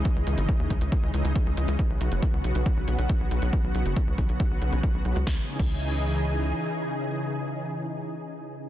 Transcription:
<<
  \new Staff \with { instrumentName = "Analog synth pad" } { \clef bass \time 4/4 \key cis \minor \tempo 4 = 138 <cis e gis dis'>16 <cis e gis dis'>8 <cis e gis dis'>16 <cis e gis dis'>16 <cis e gis dis'>8 <cis e gis dis'>16 <cis e gis dis'>8 <cis e gis dis'>8 <cis e gis dis'>8 <cis e gis dis'>8 | <cis fis b fis'>16 <cis fis b fis'>8 <cis fis b fis'>16 <cis fis b fis'>16 <cis fis b fis'>8 <cis fis b fis'>16 <cis fis b fis'>8 <cis fis b fis'>8 <cis fis b fis'>8 <cis fis b fis'>8 | <cis fis b fis'>16 <cis fis b fis'>8 <cis fis b fis'>16 <cis fis b fis'>16 <cis fis b fis'>8 <cis fis b fis'>16 <cis fis b fis'>8 <cis fis b fis'>8 <cis fis b fis'>8 <cis fis b fis'>8 | <cis e dis' gis'>1~ |
<cis e dis' gis'>1 | }
  \new Staff \with { instrumentName = "Analog synth bass" } { \clef bass \time 4/4 \key cis \minor r16 cis,16 cis,16 gis,,16 r16 dis,16 cis,16 cis,16 r16 cis,16 cis,16 cis,16 r16 cis,16 cis,16 cis,16 | r16 b,,16 b,,16 fis,,16 r16 cis,16 b,,16 b,,16 r16 b,,16 b,,16 b,,16 r16 b,,16 b,,16 b,,16 | r16 b,,16 b,,16 fis,,16 r16 cis,16 b,,16 b,,16 r16 b,,16 b,,16 b,,16 r16 b,,16 b,,16 cis,16 | cis,16 r8 cis,2~ cis,16 r4 |
r1 | }
  \new DrumStaff \with { instrumentName = "Drums" } \drummode { \time 4/4 <hh bd>8 hh16 hh16 <hh bd>8 <hh bd>16 hh16 <hh bd>8 hh16 hh16 <hh bd>8 hh16 hh16 | <hh bd>8 hh16 hh16 <hh bd>8 hh16 hh16 <hh bd>8 hh16 hh16 <hh bd>8 hh16 hh16 | <hh bd>8 hh16 hh16 <hh bd>8 <hh bd>16 hh16 <hh bd>8 hh16 hh16 <hh bd>8 hh16 hh16 | <bd sn>8. <cymc bd>16 r4 r4 r4 |
r4 r4 r4 r4 | }
>>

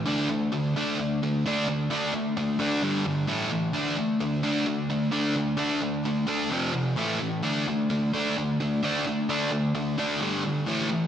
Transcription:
\new Staff \with { instrumentName = "Distorted electric guitar" } { \clef bass \time 4/4 \key d \minor \tempo 4 = 130 <d a d'>8 <d a>8 <d a>8 <d a d'>8 <d a>8 <d a>8 <d a d'>8 <d a>8 | <d a d'>8 <d a>8 <d a>8 <d a d'>8 <g, d g>8 <g, d>8 <a, e a>8 <a, e>8 | <d a d'>8 <d a>8 <d a>8 <d a d'>8 <d a>8 <d a>8 <d a d'>8 <d a>8 | <d a d'>8 <d a>8 <d a>8 <d a d'>8 <f, c f>8 <f, c>8 <a, e a>8 <a, e>8 |
<d a d'>8 <d a>8 <d a>8 <d a d'>8 <d a>8 <d a>8 <d a d'>8 <d a>8 | <d a d'>8 <d a>8 <d a>8 <d a d'>8 <g, d g>8 <g, d>8 <a, e a>8 <a, e>8 | }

